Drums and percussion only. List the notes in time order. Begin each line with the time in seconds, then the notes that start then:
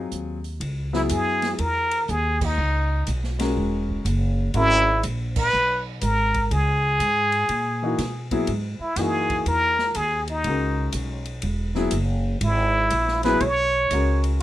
0.12 closed hi-hat
0.44 open hi-hat
0.61 ride
0.93 snare
1.09 hi-hat pedal, ride
1.42 snare, ride
1.59 ride
1.91 ride
2.08 hi-hat pedal
2.41 kick, crash
3.07 hi-hat pedal, ride
3.24 snare
3.40 snare, ride
3.89 kick
4.06 hi-hat pedal, ride
4.54 ride
5.03 hi-hat pedal, ride
5.36 kick, crash
6.01 hi-hat pedal, ride
6.34 kick, ride
6.51 ride
7.00 hi-hat pedal, ride
7.32 ride
7.49 ride
7.98 snare, hi-hat pedal, ride
8.31 kick, ride
8.47 ride
8.96 snare, hi-hat pedal, ride
9.30 kick, ride
9.46 ride
9.79 snare
9.95 hi-hat pedal, ride
10.28 ride
10.44 ride
10.92 hi-hat pedal, ride
11.25 ride
11.42 ride
11.75 snare
11.91 hi-hat pedal, ride
12.41 ride
12.90 hi-hat pedal, ride
13.08 snare
13.23 snare, ride
13.40 ride
13.91 hi-hat pedal, ride
14.24 ride